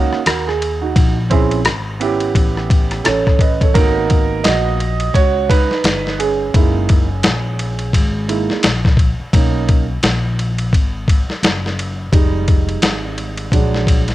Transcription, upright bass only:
0, 0, Header, 1, 3, 480
1, 0, Start_track
1, 0, Key_signature, 5, "minor"
1, 0, Tempo, 697674
1, 661, Time_signature, 4, 2, 24, 8
1, 9734, End_track
2, 0, Start_track
2, 0, Title_t, "Upright bass"
2, 0, Program_c, 0, 32
2, 181, Note_on_c, 0, 39, 93
2, 637, Note_off_c, 0, 39, 0
2, 660, Note_on_c, 0, 34, 96
2, 1117, Note_off_c, 0, 34, 0
2, 1143, Note_on_c, 0, 32, 76
2, 1598, Note_off_c, 0, 32, 0
2, 1616, Note_on_c, 0, 33, 96
2, 2075, Note_off_c, 0, 33, 0
2, 2102, Note_on_c, 0, 33, 82
2, 2558, Note_off_c, 0, 33, 0
2, 2581, Note_on_c, 0, 32, 99
2, 3037, Note_off_c, 0, 32, 0
2, 3067, Note_on_c, 0, 34, 94
2, 3520, Note_off_c, 0, 34, 0
2, 3540, Note_on_c, 0, 37, 87
2, 3905, Note_off_c, 0, 37, 0
2, 4018, Note_on_c, 0, 31, 78
2, 4476, Note_off_c, 0, 31, 0
2, 4504, Note_on_c, 0, 30, 88
2, 4959, Note_off_c, 0, 30, 0
2, 4979, Note_on_c, 0, 34, 91
2, 5458, Note_on_c, 0, 32, 82
2, 5468, Note_off_c, 0, 34, 0
2, 5824, Note_off_c, 0, 32, 0
2, 5944, Note_on_c, 0, 34, 89
2, 6307, Note_off_c, 0, 34, 0
2, 6421, Note_on_c, 0, 35, 101
2, 6877, Note_off_c, 0, 35, 0
2, 6902, Note_on_c, 0, 34, 94
2, 7357, Note_off_c, 0, 34, 0
2, 7382, Note_on_c, 0, 32, 91
2, 7746, Note_off_c, 0, 32, 0
2, 7862, Note_on_c, 0, 30, 90
2, 8318, Note_off_c, 0, 30, 0
2, 8342, Note_on_c, 0, 29, 103
2, 8798, Note_off_c, 0, 29, 0
2, 8820, Note_on_c, 0, 32, 86
2, 9277, Note_off_c, 0, 32, 0
2, 9300, Note_on_c, 0, 34, 95
2, 9734, Note_off_c, 0, 34, 0
2, 9734, End_track
3, 0, Start_track
3, 0, Title_t, "Muted upright bass strokes"
3, 88, Note_on_c, 9, 29, 41
3, 157, Note_off_c, 9, 29, 0
3, 3928, Note_on_c, 9, 29, 37
3, 3996, Note_off_c, 9, 29, 0
3, 5848, Note_on_c, 9, 29, 42
3, 5917, Note_off_c, 9, 29, 0
3, 6328, Note_on_c, 9, 29, 51
3, 6397, Note_off_c, 9, 29, 0
3, 7768, Note_on_c, 9, 29, 40
3, 7837, Note_off_c, 9, 29, 0
3, 9734, End_track
0, 0, End_of_file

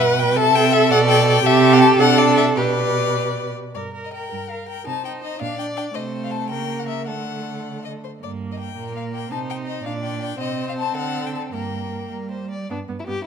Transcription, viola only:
0, 0, Header, 1, 2, 480
1, 0, Start_track
1, 0, Key_signature, 1, "major"
1, 0, Tempo, 363857
1, 484, Time_signature, 6, 3, 24, 8
1, 2886, Tempo, 388098
1, 4822, Key_signature, -2, "minor"
1, 5286, Tempo, 364742
1, 8166, Tempo, 379267
1, 11046, Tempo, 364520
1, 13926, Tempo, 382653
1, 17043, End_track
2, 0, Start_track
2, 0, Title_t, "Viola"
2, 0, Program_c, 0, 41
2, 0, Note_on_c, 0, 71, 105
2, 484, Note_on_c, 0, 69, 117
2, 503, Note_off_c, 0, 71, 0
2, 1899, Note_off_c, 0, 69, 0
2, 1907, Note_on_c, 0, 67, 127
2, 2638, Note_on_c, 0, 69, 110
2, 2658, Note_off_c, 0, 67, 0
2, 3368, Note_on_c, 0, 71, 86
2, 3386, Note_off_c, 0, 69, 0
2, 4462, Note_off_c, 0, 71, 0
2, 4832, Note_on_c, 0, 70, 38
2, 5049, Note_off_c, 0, 70, 0
2, 5056, Note_on_c, 0, 70, 34
2, 5282, Note_off_c, 0, 70, 0
2, 5293, Note_on_c, 0, 70, 39
2, 5522, Note_off_c, 0, 70, 0
2, 5530, Note_on_c, 0, 70, 38
2, 5762, Note_off_c, 0, 70, 0
2, 5770, Note_on_c, 0, 70, 34
2, 6009, Note_off_c, 0, 70, 0
2, 6016, Note_on_c, 0, 70, 40
2, 6247, Note_off_c, 0, 70, 0
2, 6255, Note_on_c, 0, 63, 46
2, 6490, Note_off_c, 0, 63, 0
2, 6499, Note_on_c, 0, 63, 46
2, 6724, Note_off_c, 0, 63, 0
2, 6732, Note_on_c, 0, 63, 42
2, 6957, Note_off_c, 0, 63, 0
2, 6965, Note_on_c, 0, 62, 45
2, 7191, Note_off_c, 0, 62, 0
2, 7199, Note_on_c, 0, 62, 39
2, 7429, Note_off_c, 0, 62, 0
2, 7437, Note_on_c, 0, 62, 45
2, 7669, Note_off_c, 0, 62, 0
2, 7677, Note_on_c, 0, 57, 52
2, 8405, Note_on_c, 0, 58, 54
2, 8424, Note_off_c, 0, 57, 0
2, 9127, Note_on_c, 0, 57, 43
2, 9146, Note_off_c, 0, 58, 0
2, 10332, Note_off_c, 0, 57, 0
2, 10570, Note_on_c, 0, 58, 38
2, 11235, Note_off_c, 0, 58, 0
2, 11286, Note_on_c, 0, 58, 38
2, 12001, Note_on_c, 0, 63, 44
2, 12020, Note_off_c, 0, 58, 0
2, 12708, Note_on_c, 0, 62, 54
2, 12728, Note_off_c, 0, 63, 0
2, 13417, Note_off_c, 0, 62, 0
2, 13425, Note_on_c, 0, 60, 56
2, 14873, Note_on_c, 0, 58, 43
2, 14892, Note_off_c, 0, 60, 0
2, 16098, Note_off_c, 0, 58, 0
2, 16339, Note_on_c, 0, 59, 45
2, 16433, Note_off_c, 0, 59, 0
2, 16568, Note_on_c, 0, 59, 43
2, 16664, Note_off_c, 0, 59, 0
2, 16802, Note_on_c, 0, 59, 42
2, 16897, Note_off_c, 0, 59, 0
2, 17043, End_track
0, 0, End_of_file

